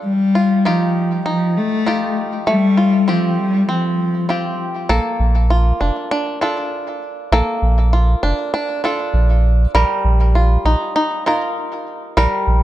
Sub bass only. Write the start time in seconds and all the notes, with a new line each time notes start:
4.89 A#1
5.20 A#1
5.81 F1
7.32 A#1
7.62 A#1
8.23 F1
9.14 A#1
9.74 A#1
10.05 A#1
10.65 A#1
12.17 A#1
12.47 A#1